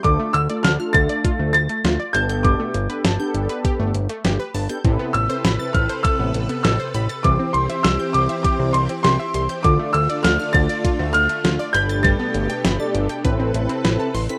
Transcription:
<<
  \new Staff \with { instrumentName = "Grand piano" } { \time 4/4 \key d \dorian \tempo 4 = 100 d'''8 e'''8 f'''8 a'''4 a'''4 g'''8 | d'''2. r4 | r8 e'''4 f'''8 e'''4 e'''4 | d'''8 c'''8 e'''8 d'''8 d'''8 c'''8 c'''8. r16 |
d'''8 e'''8 f'''8 a'''4 f'''4 g'''8 | a'''2. r4 | }
  \new Staff \with { instrumentName = "Synth pluck" } { \time 4/4 \key d \dorian d16 a16 r16 d''16 a''16 f'''16 r16 d''16 f'16 a16 r16 a16 f'16 d''16 a''16 g'''16 | b,16 a16 r16 b'16 a''16 g'''16 r16 b'16 g'16 a16 r16 a16 g'16 b'16 a''16 g'''16 | c16 b16 r16 c''16 b''16 a'''16 r16 c''16 a'16 b16 r16 b16 a'16 c''16 b''16 a'''16 | e16 c'16 r16 e''16 c'''16 g'''16 r16 e''16 g'16 c'16 r16 c'16 g'16 e''16 c'''16 g'''16 |
d16 a16 r16 d''16 a''16 f'''16 r16 d''16 f'16 a16 r16 a16 f'16 d''16 b''16 a'''16 | g16 b16 r16 g''16 b''16 a'''16 r16 g''16 b'16 c'16 r16 c'16 b'16 a''16 c'''16 b'''16 | }
  \new Staff \with { instrumentName = "Analog polysynth" } { \time 4/4 \key d \dorian <a d' f' a'>8 r16 <a d' f' a'>16 r16 <a d' f' a'>4~ <a d' f' a'>16 r4 <b d' g' a'>8~ | <b d' g' a'>8 r16 <b d' g' a'>16 r16 <b d' g' a'>4~ <b d' g' a'>16 r4 r16 <b d' g' a'>16 | <c' e' a' b'>8 r16 <c' e' a' b'>16 r16 <c' e' a' b'>4~ <c' e' a' b'>16 r4. | <c' e' g' c''>8 r16 <c' e' g' c''>16 r16 <c' e' g' c''>4~ <c' e' g' c''>16 r4 r16 <c' e' g' c''>16 |
<d' f' a' d''>8 r16 <d' f' a' d''>16 r16 <d' f' a' d''>4~ <d' f' a' d''>16 r4 <d' g' a' b'>8~ | <d' g' a' b'>8 r16 <d' g' a' b'>16 r16 <d' g' a' d''>8. <c' e' a' b'>4. r16 <c' e' a' b'>16 | }
  \new Staff \with { instrumentName = "String machine" } { \time 4/4 \key d \dorian r1 | r1 | <c a' b'>1 | <e c' g'>1 |
<d a f'>2.~ <d a f'>8 <b, a g'>8~ | <b, a g'>2 <c a' b'>2 | }
  \new Staff \with { instrumentName = "Analog synth bass" } { \clef bass \time 4/4 \key d \dorian d,16 r16 d,16 r16 d,16 r16 d,16 r8 d,16 d,16 r16 d,16 r16 g,,8~ | g,,16 r16 g,,16 r16 g,,16 r16 g,,16 r8 g,,16 g,,16 r16 g,,16 r16 g,,16 r16 | a,,16 r16 a,,16 r16 a,,16 r16 a,,16 r8 a,,16 a,,16 r16 a,,16 r16 a,,16 r16 | c,16 r16 c,16 r16 c,16 r16 c,16 r8 c,16 c,16 r16 c,16 r16 c,16 r16 |
d,16 r16 d,16 r16 d,16 r16 d,16 r8 d,16 d,16 r16 d,16 r16 g,,8~ | g,,16 r16 g,,16 r16 g,,16 r16 g,,16 r16 a,,16 a,,16 a,,16 r16 a,,16 r16 a,,16 r16 | }
  \new DrumStaff \with { instrumentName = "Drums" } \drummode { \time 4/4 <hh bd>8 hh16 hh16 <hh sn>8 <hh bd>16 hh16 <hh bd>8 hh16 hh16 <hh sn>8 hh16 hh16 | <hh bd>8 hh16 hh16 <hh sn>8 hh16 hh16 <hh bd>8 hh16 hh16 <hh sn>8 hho16 hh16 | <hh bd>8 hh16 hh16 <hh sn>8 <hh bd>16 hh16 <hh bd>8 hh16 hh16 <hh sn>8 hh16 hh16 | <hh bd>8 hh16 hh16 <hh sn>8 hh16 hh16 <hh bd>8 hh16 hh16 <hh sn>8 hh16 hh16 |
<hh bd>8 hh16 hh16 <hh sn>8 <hh bd>16 hh16 <hh bd>8 hh16 hh16 <hh sn>8 hh16 hh16 | <hh bd>8 hh16 hh16 <hh sn>8 hh16 hh16 <hh bd>8 hh16 hh16 <hh sn>8 hho16 hh16 | }
>>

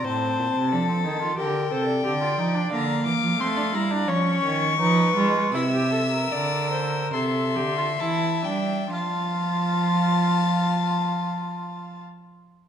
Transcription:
<<
  \new Staff \with { instrumentName = "Violin" } { \time 4/4 \key g \minor \tempo 4 = 80 a''2 g''2 | \key f \major bes''8 d'''8 c'''8 bes''8 des'''2 | e'''2 c'''4 a''8 g''8 | a''1 | }
  \new Staff \with { instrumentName = "Violin" } { \time 4/4 \key g \minor c''4 a'4 bes'8 c''16 d''4~ d''16 | \key f \major f''2 des''4 ces''4 | e''4 d''8 c''8 e''2 | f''1 | }
  \new Staff \with { instrumentName = "Viola" } { \time 4/4 \key g \minor c'4 d'16 c'16 ees'16 f'16 g'8 a'8 g'16 f'16 ees'16 d'16 | \key f \major bes4 c'16 d'16 e'16 d'16 des'4 ees'8 f'8 | e'16 g'16 a'16 bes'4~ bes'16 a'8 g'16 f'16 e'8 d'8 | f'1 | }
  \new Staff \with { instrumentName = "Cello" } { \clef bass \time 4/4 \key g \minor a,8 bes,16 c16 f8 ees8 d8 c8 d8 f8 | \key f \major d8 e16 f16 a8 g8 f8 ees8 f8 aes8 | c4 d4 c8 d8 e8 g8 | f1 | }
>>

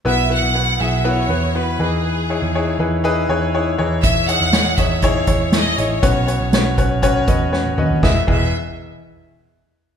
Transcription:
<<
  \new Staff \with { instrumentName = "Violin section" } { \time 4/4 \key e \major \tempo 4 = 120 e''8 fis''4 e''8 cis''4 b'8 gis'8~ | gis'4. r2 r8 | e''8 fis''4 e''8 cis''4 dis''8 cis''8~ | cis''4. r2 r8 |
e''8 e''8 r2. | }
  \new Staff \with { instrumentName = "Upright piano" } { \time 4/4 \key e \major <b e' fis' b'>8 <b e' fis' b'>8 <b e' fis' b'>8 <b e' fis' gis'>8 <b e' fis' b'>8 <b e' fis' b'>8 <b e' fis' b'>8 <dis' e' gis' b'>8~ | <dis' e' gis' b'>8 <dis' e' gis' cis''>8 <dis' e' gis' cis''>8 <dis' e' gis' b'>8 <dis' e' gis' b'>8 <dis' e' gis' cis''>8 <dis' e' gis' cis''>8 <dis' e' gis' cis''>8~ | <dis' e' gis' cis''>8 <dis' e' gis' cis''>8 <dis' e' gis' cis''>8 <dis' e' gis' cis''>8 <dis' e' gis' cis''>8 <dis' e' gis' cis''>8 <dis' e' gis' cis''>8 <dis' e' gis' dis''>8 | <cis' fis' b' cis''>8 <cis' fis' b' cis''>8 <cis' fis' b' cis''>8 <cis' fis' b' cis''>8 <cis' fis' b' cis''>8 <cis' fis' b' dis''>8 <cis' fis' b' cis''>8 <cis' fis' b' dis''>8 |
<e' gis' b' dis''>8 <e' gis' b' dis''>8 r2. | }
  \new Staff \with { instrumentName = "Upright piano" } { \clef bass \time 4/4 \key e \major b,4. r2 e8~ | e4 r2 r8 e8~ | e4 r2. | b,4. r2 r8 |
e,8 e,8 r2. | }
  \new Staff \with { instrumentName = "Picked electric bass" } { \clef bass \time 4/4 \key e \major b,,8. b,,8. b,,4 e,4 e,8~ | e,8. e,8. e,4 e,4 e,8~ | e,8. e,8. e,4 e,4 a,,8 | b,,8. b,,8. b,,4 e,4 dis,8 |
e,,16 r16 e,,8 r2. | }
  \new DrumStaff \with { instrumentName = "Drums" } \drummode { \time 4/4 r4 r4 r4 r4 | r4 r4 r4 r4 | <hh bd>8 hh8 <hh sn>8 <hh bd>8 <hh bd>8 <hh bd>8 <hh sn>8 hh8 | <hh bd>8 hh8 <hh sn>8 <hh bd>8 <hh bd>8 <hh bd>8 sn16 tommh16 toml16 tomfh16 |
<bd sn>8 <cymc bd>8 r4 r4 r4 | }
>>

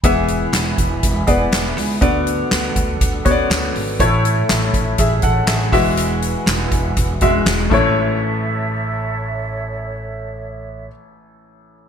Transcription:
<<
  \new Staff \with { instrumentName = "Flute section" } { \time 4/4 \key a \major \tempo 4 = 121 << { <e' gis'' b''>1 | <d' b' fis''>1 | <cis'' e''>2.~ <cis'' e''>8 <e' fis'' gis''>8~ | <e' fis'' gis''>2.~ <e' fis'' gis''>8 <a' cis'' e''>8~ |
<a' cis'' e''>1~ | <a' cis'' e''>1 | } \\ { e''1 | a'1~ | a'2.~ a'8 b'8~ | b'2.~ b'8 r8 |
r1 | r1 | } >> }
  \new Staff \with { instrumentName = "Grand piano" } { \time 4/4 \key a \major << { r1 | r1 | r2 <gis' e''>8 <a' fis''>8 <gis' e''>4 | r1 |
r1 | r1 | } \\ { <e b gis' e''>4. r4 <b gis' d''>4 r8 | <d b fis' d''>4. r4 <b fis' cis'' d''>4 r8 | <a, a e' cis''>4. r2 <e gis fis' e''>8~ | <e gis fis' e''>4 r4. <gis fis' e''>4 <a,, a e' cis''>8~ |
<a,, a e' cis''>1~ | <a,, a e' cis''>1 | } >> }
  \new Staff \with { instrumentName = "Upright bass" } { \clef bass \time 4/4 \key a \major e,,4 e,,8 e,,8 e,,8 e,,8 e,,8 cis,8 | d,4 d,8 d,8 d,8 d,8 d,8 gis,,8 | a,,4 a,,8 a,,8 a,,8 a,,8 a,,8 e,,8~ | e,,4 e,,8 e,,8 e,,8 e,,8 e,,8 a,,8~ |
a,,1~ | a,,1 | }
  \new DrumStaff \with { instrumentName = "Drums" } \drummode { \time 4/4 <hh bd>8 hh8 <hc hh sn>8 <hh bd>8 <hh bd>8 <hh bd>8 <hc hh sn>8 <hho sn>8 | <hh bd>8 hh8 <hc hh sn>8 <hh bd>8 <hh bd>8 <hh bd>8 <hc hh sn>8 hho8 | <hh bd>8 hh8 <hc hh sn>8 <hh bd>8 <hh bd>8 <hh bd>8 <hc hh sn>8 <hho bd sn>8 | hh8 hh8 <hc hh sn>8 <hh bd>8 <hh bd>8 <hh bd>8 <hc hh sn>8 <cymc bd>8 |
r4 r4 r4 r4 | r4 r4 r4 r4 | }
>>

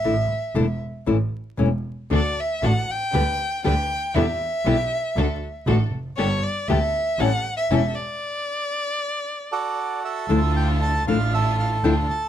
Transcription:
<<
  \new Staff \with { instrumentName = "Bandoneon" } { \time 4/4 \key d \major \tempo 4 = 117 << { r1 | r1 | r1 | r1 |
r2 r8 d''4 e''8~ | \key d \minor e''8 g''8 a''8 f''8 e''8 f''8 g''8 a''8 | } \\ { r1 | r1 | r1 | r1 |
r2 r8 <fis' a'>4 a'8~ | a'4. r8 a'2 | } >> }
  \new Staff \with { instrumentName = "Violin" } { \time 4/4 \key d \major e''4. r2 r8 | d''8 e''8 fis''8 g''4. g''4 | e''2. r4 | cis''8 d''8 e''4 fis''8. e''8. d''8~ |
d''2.~ d''8 r8 | \key d \minor r1 | }
  \new Staff \with { instrumentName = "String section" } { \time 4/4 \key d \major r1 | <d' fis' a'>8 r8 <d' fis' a'>8 r8 <d' g' b'>8 r8 <d' g' b'>8 r8 | <d' e' g'>8 r8 <d' e' g'>8 r8 <d' fis' a'>8 r8 <d' fis' a'>8 r8 | <b g' a'>8 r8 <b g' a'>8 r8 <cis' g' a'>8 r8 <cis' g' a'>8 r8 |
r1 | \key d \minor <d' e' f'>4. <d' e' f'>4. <d' e' f'>8 r8 | }
  \new Staff \with { instrumentName = "Nylon-string guitar" } { \time 4/4 \key d \major <d a d' e'>8 r8 <d a d' e'>8 r8 <e a cis' e'>8 r8 <e a cis' e'>8 r8 | <d a d' fis'>8 r8 <d a d' fis'>8 r8 <d g b g'>8 r8 <d g b g'>8 r8 | <b, d g b e'>8 r8 <b, d g b e'>8 r8 <d a d' fis'>8 r8 <d a d' fis'>8 r8 | <d g b g'>8 r8 <d g b g'>8 r8 <e g cis' e'>8 r8 <e g cis' e'>8 r8 |
r1 | \key d \minor <d f a d' e'>8 r4 <d f a d' e'>8 r4 <d f a d' e'>8 r8 | }
  \new Staff \with { instrumentName = "Double bass" } { \clef bass \time 4/4 \key d \major a,,8 r8 e,,8 r8 a,,8 r8 e,,8 r8 | d,8 r8 a,,8 r8 d,8 r8 d,8 r8 | e,8 r8 b,,8 r8 d,8 r8 a,,8 f,,8 | g,,8 r8 d,8 r8 a,,8 r8 e,,8 r8 |
r1 | \key d \minor d,4. a,,4. d,8 r8 | }
>>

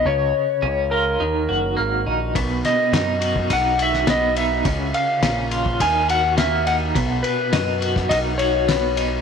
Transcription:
<<
  \new Staff \with { instrumentName = "Electric slide guitar" } { \time 4/4 \key b \lydian \tempo 4 = 104 cis''4. ais'2 r8 | r8 dis''4. fis''8 e''8 dis''8 e''8 | r8 eis''4. gis''8 fis''8 e''8 fis''8 | r8 b'4. dis''8 cis''4. | }
  \new Staff \with { instrumentName = "Clean electric guitar" } { \time 4/4 \key b \lydian cis4 cis'8 eis'8 dis8 fis'8 ais8 dis'8 | b,4 dis'8 fis'8 dis'8 fis'8 b8 dis'8 | cis4 cis'8 eis'8 dis8 fis'8 ais8 dis'8 | b,4 dis'8 fis'8 dis'8 fis'8 b8 dis'8 | }
  \new Staff \with { instrumentName = "Picked electric bass" } { \clef bass \time 4/4 \key b \lydian cis,8 r8 cis,4 dis,8 fis,,8 gis,,8 ais,,8 | b,,8 r8 fis,4 b,,2 | cis,8 r8 ais,,4 dis,2 | b,,8 r8 fis,4 b,,2 | }
  \new DrumStaff \with { instrumentName = "Drums" } \drummode { \time 4/4 r4 r4 r4 r4 | <bd cymr>8 <cymr sn>8 <cymr sn>8 cymr16 bd16 <bd cymr>8 cymr16 sn16 <cymr sn>8 cymr8 | <bd cymr>8 cymr8 <cymr sn>8 cymr16 bd16 <bd cymr>8 cymr8 <cymr sn>8 cymr8 | <bd cymr>8 cymr8 <cymr sn>8 cymr16 <bd sn>16 <bd cymr>8 cymr8 <cymr sn>8 cymr8 | }
>>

